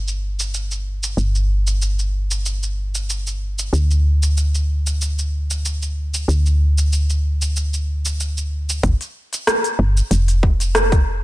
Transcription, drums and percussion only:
0.08 shaker
0.40 shaker
0.54 shaker
0.71 shaker
1.03 shaker
1.18 shaker
1.35 shaker
1.67 shaker
1.82 shaker
1.99 shaker
2.31 shaker
2.46 shaker
2.63 shaker
2.95 shaker
3.10 shaker
3.27 shaker
3.59 shaker
3.74 shaker
3.91 shaker
4.23 shaker
4.37 shaker
4.55 shaker
4.87 shaker
5.02 shaker
5.19 shaker
5.51 shaker
5.65 shaker
5.82 shaker
6.14 shaker
6.29 shaker
6.46 shaker
6.78 shaker
6.93 shaker
7.10 shaker
7.42 shaker
7.57 shaker
7.74 shaker
8.06 shaker
8.20 shaker
8.38 shaker
8.70 shaker
8.83 kick, open hi-hat, shaker
9.01 open hi-hat, shaker
9.33 open hi-hat, shaker
9.47 cross-stick, open hi-hat, shaker
9.64 open hi-hat, shaker
9.97 shaker
10.11 open hi-hat, shaker
10.28 open hi-hat, shaker
10.43 kick
10.60 open hi-hat, shaker
10.75 cross-stick, open hi-hat, shaker
10.92 kick, open hi-hat, shaker

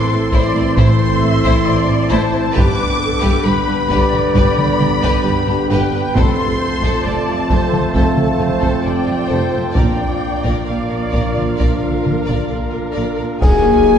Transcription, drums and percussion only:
0.32 taiko
0.77 taiko
1.44 taiko
2.57 taiko
3.23 taiko
3.91 taiko
4.13 taiko mid
4.35 taiko
4.58 taiko mid
4.81 taiko mid
5.04 taiko
6.17 taiko
6.83 taiko
7.50 taiko
7.73 taiko mid
7.95 taiko
8.17 taiko mid
8.40 taiko mid
8.62 taiko
9.76 taiko
10.45 taiko
11.13 taiko
11.37 taiko mid
11.60 taiko
11.83 taiko mid
12.06 taiko mid
12.29 taiko
13.42 concert bass drum, taiko, crash

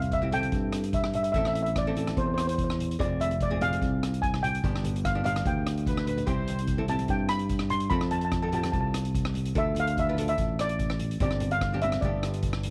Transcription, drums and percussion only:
0.02 closed hi-hat
0.11 kick, closed hi-hat
0.22 high conga
0.31 closed hi-hat, low conga
0.42 closed hi-hat, high conga
0.52 kick, closed hi-hat
0.73 cross-stick, closed hi-hat
0.84 closed hi-hat
0.93 kick, closed hi-hat
1.04 cross-stick
1.13 closed hi-hat, low conga
1.24 closed hi-hat
1.34 kick, closed hi-hat
1.45 cross-stick
1.55 closed hi-hat
1.66 closed hi-hat
1.76 kick, cross-stick, closed hi-hat
1.86 high conga
1.96 closed hi-hat, low conga
2.07 cross-stick, closed hi-hat, high conga
2.17 kick, closed hi-hat
2.38 cross-stick, closed hi-hat
2.49 closed hi-hat
2.58 kick, closed hi-hat
2.70 cross-stick
2.79 closed hi-hat, low conga
2.91 closed hi-hat
3.00 kick, closed hi-hat
3.20 closed hi-hat, high conga
3.31 closed hi-hat
3.40 kick, closed hi-hat
3.51 high conga
3.61 closed hi-hat, low conga
3.70 closed hi-hat, high conga
3.82 kick, closed hi-hat
4.03 cross-stick, closed hi-hat
4.14 closed hi-hat
4.23 kick, closed hi-hat
4.34 cross-stick
4.43 closed hi-hat, low conga
4.55 closed hi-hat
4.64 kick, closed hi-hat
4.76 cross-stick
4.84 closed hi-hat, high conga, low conga
4.96 closed hi-hat
5.05 kick, cross-stick, closed hi-hat
5.24 closed hi-hat, low conga
5.36 cross-stick, closed hi-hat, high conga
5.45 kick, closed hi-hat, high conga
5.67 cross-stick, closed hi-hat
5.77 closed hi-hat
5.85 kick, closed hi-hat, high conga
5.97 cross-stick, high conga
6.07 closed hi-hat, low conga
6.17 closed hi-hat, low conga
6.27 kick, closed hi-hat
6.48 closed hi-hat, high conga
6.59 closed hi-hat
6.67 kick, closed hi-hat
6.78 high conga
6.88 closed hi-hat, low conga
6.99 closed hi-hat, high conga
7.08 kick, closed hi-hat
7.29 cross-stick, closed hi-hat
7.39 closed hi-hat
7.49 kick, closed hi-hat
7.59 cross-stick
7.70 closed hi-hat, low conga
7.80 closed hi-hat
7.90 kick, closed hi-hat
8.01 cross-stick
8.11 closed hi-hat, high conga
8.21 closed hi-hat
8.32 kick, cross-stick, closed hi-hat
8.43 high conga
8.52 closed hi-hat, low conga
8.63 cross-stick, closed hi-hat, high conga
8.73 kick, closed hi-hat
8.94 cross-stick, closed hi-hat
9.05 closed hi-hat
9.15 kick, closed hi-hat
9.25 cross-stick
9.34 closed hi-hat, low conga
9.45 closed hi-hat
9.55 kick, closed hi-hat
9.75 closed hi-hat, high conga
9.87 closed hi-hat
9.97 kick, closed hi-hat
10.07 high conga
10.17 closed hi-hat, low conga
10.28 closed hi-hat, high conga
10.38 kick, closed hi-hat
10.59 cross-stick, closed hi-hat
10.69 closed hi-hat
10.79 kick, closed hi-hat
10.90 cross-stick
10.99 closed hi-hat, low conga
11.11 closed hi-hat
11.20 kick, closed hi-hat, low conga
11.31 cross-stick
11.40 closed hi-hat, high conga, low conga
11.51 closed hi-hat, high conga
11.61 kick, cross-stick, closed hi-hat
11.72 high conga
11.81 closed hi-hat, low conga
11.92 cross-stick, closed hi-hat, high conga
12.02 kick, closed hi-hat, high conga
12.23 cross-stick, closed hi-hat
12.34 closed hi-hat
12.43 kick, closed hi-hat
12.53 cross-stick
12.63 closed hi-hat, low conga

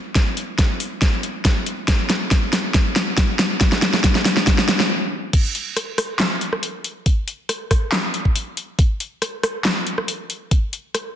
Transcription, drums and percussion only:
0.15 kick, snare, closed hi-hat
0.37 closed hi-hat
0.59 kick, snare, closed hi-hat
0.80 open hi-hat
1.02 kick, snare, closed hi-hat
1.23 closed hi-hat
1.45 kick, snare, closed hi-hat
1.66 closed hi-hat
1.88 kick, snare, closed hi-hat
2.10 snare, closed hi-hat
2.31 kick, snare, closed hi-hat
2.53 snare, open hi-hat
2.74 kick, snare, closed hi-hat
2.96 snare, closed hi-hat
3.18 kick, snare, closed hi-hat
3.39 snare, closed hi-hat
3.61 kick, snare, closed hi-hat
3.72 snare
3.82 snare, closed hi-hat
3.94 snare
4.04 kick, snare, closed hi-hat
4.15 snare
4.25 snare, open hi-hat
4.37 snare
4.47 kick, snare, closed hi-hat
4.58 snare
4.69 snare, closed hi-hat
4.80 snare
5.33 kick, closed hi-hat, crash
5.55 closed hi-hat
5.77 cross-stick, closed hi-hat
5.98 cross-stick, open hi-hat
6.20 snare, clap, closed hi-hat
6.41 closed hi-hat
6.53 cross-stick
6.63 closed hi-hat
6.84 closed hi-hat
7.06 kick, closed hi-hat
7.28 closed hi-hat
7.49 cross-stick, closed hi-hat
7.71 kick, cross-stick, open hi-hat
7.92 snare, clap, closed hi-hat
8.14 closed hi-hat
8.25 kick
8.36 closed hi-hat
8.57 closed hi-hat
8.79 kick, closed hi-hat
9.00 closed hi-hat
9.22 cross-stick, closed hi-hat
9.43 cross-stick, open hi-hat
9.65 snare, clap, closed hi-hat
9.87 closed hi-hat
9.98 cross-stick
10.08 closed hi-hat
10.30 closed hi-hat
10.51 kick, closed hi-hat
10.73 closed hi-hat
10.95 cross-stick, closed hi-hat

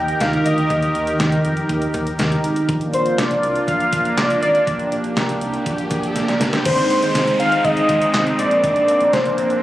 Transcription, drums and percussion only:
0.08 closed hi-hat
0.20 snare, closed hi-hat
0.33 closed hi-hat
0.46 closed hi-hat
0.58 closed hi-hat
0.70 kick, closed hi-hat
0.82 closed hi-hat
0.95 closed hi-hat
1.07 closed hi-hat
1.20 snare, closed hi-hat
1.32 closed hi-hat
1.45 closed hi-hat
1.57 closed hi-hat
1.69 kick, closed hi-hat
1.82 closed hi-hat
1.94 kick, closed hi-hat
2.07 closed hi-hat
2.19 snare, closed hi-hat
2.32 closed hi-hat
2.44 closed hi-hat
2.56 closed hi-hat
2.69 kick, closed hi-hat
2.81 closed hi-hat
2.94 closed hi-hat
3.06 closed hi-hat
3.18 snare, closed hi-hat
3.31 closed hi-hat
3.43 closed hi-hat
3.55 closed hi-hat
3.68 kick, closed hi-hat
3.80 closed hi-hat
3.93 kick, closed hi-hat
4.05 closed hi-hat
4.17 snare, clap, closed hi-hat
4.30 closed hi-hat
4.43 closed hi-hat
4.55 closed hi-hat
4.67 kick, closed hi-hat
4.79 closed hi-hat
4.92 closed hi-hat
5.04 closed hi-hat
5.17 snare, closed hi-hat
5.29 closed hi-hat
5.41 closed hi-hat
5.54 closed hi-hat
5.66 kick, closed hi-hat
5.78 closed hi-hat
5.91 kick, closed hi-hat
6.03 closed hi-hat
6.16 snare, closed hi-hat
6.28 snare, closed hi-hat
6.41 snare, closed hi-hat
6.53 snare, closed hi-hat
6.65 kick, closed hi-hat, crash
6.78 closed hi-hat
6.90 closed hi-hat
7.02 closed hi-hat
7.15 snare, closed hi-hat
7.27 closed hi-hat
7.40 closed hi-hat
7.52 closed hi-hat
7.64 kick, closed hi-hat
7.77 closed hi-hat
7.89 kick, closed hi-hat
8.02 closed hi-hat
8.14 snare, clap, closed hi-hat
8.27 closed hi-hat
8.39 closed hi-hat
8.51 closed hi-hat
8.64 kick, closed hi-hat
8.76 closed hi-hat
8.88 closed hi-hat
9.01 closed hi-hat
9.13 snare, closed hi-hat
9.26 closed hi-hat
9.38 closed hi-hat
9.50 closed hi-hat

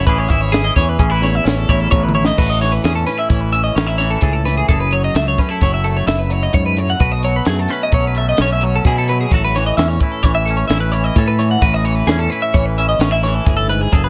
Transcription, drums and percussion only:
0.07 kick, closed hi-hat
0.30 kick, closed hi-hat
0.53 snare, closed hi-hat
0.76 kick, snare, closed hi-hat
0.99 kick, closed hi-hat
1.23 snare, closed hi-hat
1.46 snare, closed hi-hat
1.69 kick, closed hi-hat
1.92 kick, high tom
2.09 mid tom
2.24 snare
2.38 kick, crash
2.62 snare, closed hi-hat
2.84 snare, closed hi-hat
3.07 snare, closed hi-hat
3.30 kick, closed hi-hat
3.54 closed hi-hat
3.77 snare, closed hi-hat
3.99 snare, closed hi-hat
4.21 kick, snare, closed hi-hat
4.46 snare, closed hi-hat
4.69 kick, closed hi-hat
4.91 closed hi-hat
5.15 snare, closed hi-hat
5.38 kick, snare, closed hi-hat
5.61 kick, snare, closed hi-hat
5.84 closed hi-hat
6.07 snare, closed hi-hat
6.30 closed hi-hat
6.53 kick, closed hi-hat
6.77 closed hi-hat
7.00 kick, closed hi-hat
7.23 closed hi-hat
7.45 snare, closed hi-hat
7.68 snare, closed hi-hat
7.92 kick, closed hi-hat
8.15 closed hi-hat
8.37 snare, closed hi-hat
8.61 closed hi-hat
8.85 kick, snare, closed hi-hat
9.08 closed hi-hat
9.31 kick, closed hi-hat
9.55 snare, closed hi-hat
9.78 snare, closed hi-hat
10.00 kick, closed hi-hat
10.23 kick, snare, closed hi-hat
10.48 closed hi-hat
10.69 snare, closed hi-hat
10.93 closed hi-hat
11.16 kick, closed hi-hat
11.40 closed hi-hat
11.62 kick, closed hi-hat
11.85 closed hi-hat
12.08 snare, closed hi-hat
12.32 closed hi-hat
12.54 kick, closed hi-hat
12.78 closed hi-hat
13.00 snare, closed hi-hat
13.24 snare, closed hi-hat
13.46 kick, closed hi-hat
13.70 closed hi-hat
13.93 kick, closed hi-hat

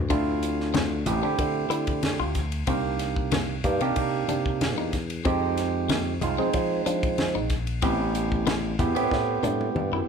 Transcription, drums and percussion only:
0.10 kick, ride
0.43 hi-hat pedal, ride
0.60 snare
0.74 snare, ride, high conga
1.06 hi-hat pedal, ride, muted conga, high conga
1.39 kick, ride, muted conga
1.71 hi-hat pedal, ride
1.87 kick, ride
2.03 snare, ride, high conga
2.35 kick, snare, hi-hat pedal, ride
2.52 ride
2.67 kick, ride, muted conga
2.99 snare, hi-hat pedal, ride
3.16 kick
3.32 snare, ride, high conga
3.64 kick, hi-hat pedal, ride, muted conga, high conga
3.81 ride
3.96 kick, ride, muted conga
4.29 hi-hat pedal, ride, muted conga, high conga
4.46 kick
4.61 snare, ride, high conga
4.93 kick, snare, hi-hat pedal, ride
5.10 ride
5.25 kick, ride, muted conga
5.57 snare, hi-hat pedal, ride
5.89 snare, ride, high conga
6.21 hi-hat pedal, ride, muted conga, high conga
6.53 kick, ride, muted conga
6.86 hi-hat pedal, ride, muted conga
7.03 kick, ride
7.18 snare, ride, high conga
7.50 kick, snare, hi-hat pedal, ride
7.67 ride
7.82 kick, ride
8.15 hi-hat pedal, ride
8.32 kick
8.47 snare, ride, high conga
8.79 kick, hi-hat pedal, ride, muted conga, high conga, low conga
8.96 ride
9.11 kick, snare, muted conga
9.43 hi-hat pedal, high tom, muted conga, high conga
9.61 high tom
9.76 mid tom, high conga

